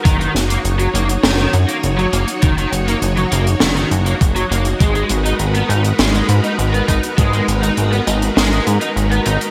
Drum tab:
HH |xxxxxxxxxxxxxxxx|xxxxxxxxxxxxxxxx|xxxxxxxxxxxxxxxx|xxxxxxxxxxxxxxxx|
SD |--o-----o-------|--------o-------|--------o-------|--------o-------|
BD |o---------------|o-----------o---|o-------------o-|o---------------|